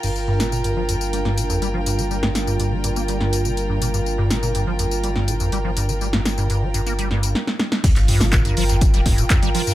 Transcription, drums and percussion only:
0.03 crash, tambourine
0.16 tambourine
0.40 snare, closed hi-hat, tambourine
0.52 tambourine
0.64 closed hi-hat, tambourine
0.89 closed hi-hat, tambourine
1.01 tambourine
1.13 closed hi-hat, tambourine
1.25 snare
1.38 closed hi-hat, tambourine
1.50 tambourine
1.62 closed hi-hat, tambourine
1.86 closed hi-hat, tambourine
1.99 tambourine
2.11 tambourine
2.23 snare
2.35 snare, closed hi-hat, tambourine
2.47 tambourine
2.60 closed hi-hat, tambourine
2.84 closed hi-hat, tambourine
2.96 tambourine
3.08 closed hi-hat, tambourine
3.21 snare
3.33 closed hi-hat, tambourine
3.45 tambourine
3.57 closed hi-hat, tambourine
3.82 closed hi-hat, tambourine
3.94 tambourine
4.06 tambourine
4.31 snare, closed hi-hat, tambourine
4.43 tambourine
4.55 closed hi-hat, tambourine
4.79 closed hi-hat, tambourine
4.91 tambourine
5.04 closed hi-hat, tambourine
5.16 snare
5.28 closed hi-hat, tambourine
5.40 tambourine
5.52 closed hi-hat, tambourine
5.77 closed hi-hat, tambourine
5.89 tambourine
6.01 tambourine
6.13 snare
6.25 snare, closed hi-hat, tambourine
6.38 tambourine
6.50 closed hi-hat, tambourine
6.74 closed hi-hat, tambourine
6.87 tambourine
6.99 closed hi-hat, tambourine
7.11 snare
7.23 closed hi-hat, tambourine
7.35 snare
7.47 snare
7.59 snare
7.72 snare
7.84 kick, closed hi-hat, tambourine, crash
7.96 clap, closed hi-hat, tambourine
8.08 closed hi-hat, open hi-hat
8.21 snare, closed hi-hat, tambourine
8.33 kick, snare, clap, closed hi-hat, tambourine
8.45 closed hi-hat, tambourine
8.57 closed hi-hat, open hi-hat
8.69 snare, closed hi-hat, tambourine
8.81 kick, closed hi-hat, tambourine
8.94 snare, closed hi-hat, tambourine
9.06 kick, snare, closed hi-hat, open hi-hat
9.18 closed hi-hat, tambourine
9.30 kick, snare, clap, closed hi-hat, tambourine
9.43 snare, closed hi-hat, tambourine
9.55 closed hi-hat, open hi-hat
9.67 tambourine

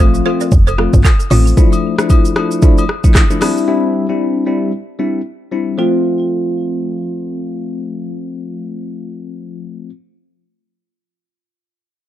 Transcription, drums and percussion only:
0.00 high agogo
0.14 shaker
0.25 high agogo
0.41 shaker
0.52 kick, shaker
0.67 high agogo, shaker
0.79 cross-stick
0.93 kick, shaker
1.04 kick, clap, high agogo, shaker
1.20 shaker
1.30 open hi-hat, high agogo, shaker
1.47 shaker
1.57 kick, shaker
1.73 high agogo, shaker
1.98 cross-stick, shaker
2.10 kick, high agogo, shaker
2.25 shaker
2.36 cross-stick, high agogo
2.51 shaker
2.62 kick, shaker
2.78 high agogo, shaker
2.89 cross-stick
3.04 kick, shaker
3.15 kick, cross-stick, clap, high agogo, shaker
3.30 shaker
3.41 cross-stick, open hi-hat, high agogo, shaker
3.57 shaker

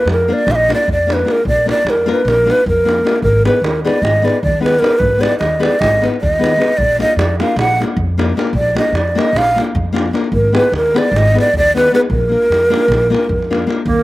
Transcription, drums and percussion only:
0.08 davul high
0.18 davul high
0.39 davul high
0.48 davul high
0.60 davul high
0.70 davul high
0.89 davul low
1.10 davul high
1.19 davul high
1.28 davul high
1.38 davul high
1.47 davul low
1.58 davul high
1.69 davul high
1.87 davul high
1.97 davul high
2.09 davul high
2.19 davul high
2.28 davul high
2.50 davul high
2.68 davul low
2.89 davul high
2.99 davul high
3.07 davul high
3.16 davul high
3.24 davul low
3.36 davul high
3.45 davul high
3.64 davul high
3.76 davul high
3.87 davul high
3.96 davul high
4.05 davul high
4.16 davul high
4.28 davul high
4.46 davul low
4.66 davul high
4.75 davul high
4.84 davul high
4.92 davul high
5.01 davul low
5.13 davul high
5.23 davul high
5.32 davul high
5.41 davul high
5.63 davul high
5.73 davul high
5.82 davul high, davul low
5.93 davul high
6.04 davul high
6.14 davul high
6.24 davul low
6.34 davul high
6.44 davul high
6.62 davul high
6.80 davul low
6.91 davul high
7.00 davul high
7.19 davul high
7.29 davul high
7.40 davul high
7.50 davul high
7.59 davul high
7.70 davul high
7.82 davul high
7.98 davul low
8.19 davul high
8.29 davul high
8.39 davul high
8.47 davul high
8.55 davul low
8.66 davul high
8.77 davul high
8.95 davul high
9.08 davul high
9.19 davul high
9.27 davul high
9.36 davul high
9.47 davul high
9.58 davul high
9.76 davul low
9.96 davul high
10.06 davul high
10.15 davul high
10.24 davul high
10.33 davul low
10.45 davul high
10.55 davul high
10.73 davul high
10.86 davul high
10.96 davul high
11.07 davul high
11.16 davul high
11.28 davul high
11.38 davul high
11.57 davul low
11.77 davul high
11.86 davul high
11.95 davul high
12.03 davul high
12.11 davul low
12.21 davul high
12.42 davul high
12.52 davul high
12.63 davul high
12.74 davul high
12.83 davul high
12.92 davul high, davul low
13.04 davul high
13.15 davul high
13.24 davul high
13.33 davul low
13.42 davul high
13.53 davul high
13.62 davul high
13.71 davul high
13.88 davul low
13.99 davul high

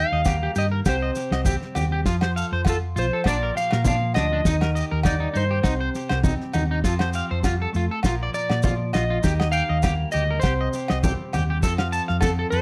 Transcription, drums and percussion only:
0.25 kick, snare, high conga, low agogo, maracas
0.55 muted conga, maracas
0.85 kick, snare, muted conga, low agogo, maracas
1.15 snare, muted conga, maracas
1.32 snare, low agogo
1.45 kick, high conga, maracas
1.62 snare
1.75 high conga, low agogo, maracas
2.06 kick, snare, muted conga, maracas
2.21 snare, low agogo
2.37 maracas
2.65 kick, snare, high conga, low agogo, maracas
2.96 muted conga, maracas
3.24 kick, snare, muted conga, low agogo, maracas
3.55 snare, muted conga, maracas
3.71 snare, low agogo
3.84 kick, high conga, maracas
4.14 snare, low agogo, maracas
4.45 kick, snare, muted conga, high conga, maracas
4.61 snare, low agogo
4.76 maracas
5.03 kick, snare, high conga, low agogo, maracas
5.34 muted conga, maracas
5.63 kick, snare, low agogo, maracas
5.94 snare, muted conga, maracas
6.09 snare, low agogo
6.24 kick, high conga, maracas
6.41 snare
6.53 high conga, low agogo, maracas
6.84 kick, snare, muted conga, maracas
6.99 snare, low agogo
7.13 maracas
7.43 kick, snare, high conga, low agogo, maracas
7.74 muted conga, maracas
8.03 kick, snare, low agogo, maracas
8.34 muted conga, maracas
8.50 snare, low agogo
8.63 kick, high conga, maracas
8.93 snare, low agogo, maracas
9.23 kick, snare, muted conga, high conga, maracas
9.40 snare, low agogo
9.52 maracas
9.83 kick, snare, high conga, low agogo, maracas
10.12 muted conga, maracas
10.42 kick, snare, muted conga, low agogo, maracas
10.73 snare, muted conga, maracas
10.88 snare, low agogo
11.03 kick, high conga, maracas
11.33 high conga, low agogo, maracas
11.63 kick, snare, muted conga, maracas
11.78 snare, low agogo
11.93 maracas
12.08 snare
12.21 kick, snare, high conga, low agogo, maracas
12.52 muted conga, maracas

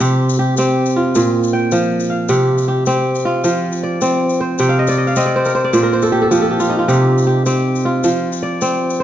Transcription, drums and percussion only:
0.01 shaker
0.29 shaker
0.57 shaker
0.86 shaker
1.15 shaker
1.43 shaker
1.71 shaker
2.00 shaker
2.29 shaker
2.58 shaker
2.86 shaker
3.15 shaker
3.44 shaker
3.72 shaker
4.01 shaker
4.30 shaker
4.58 shaker
4.87 shaker
5.07 shaker
5.16 shaker
5.45 shaker
5.55 shaker
5.73 shaker
5.93 shaker
6.02 shaker
6.12 shaker
6.31 shaker
6.60 shaker
6.89 shaker
7.18 shaker
7.46 shaker
7.76 shaker
8.04 shaker
8.32 shaker
8.61 shaker
8.90 shaker

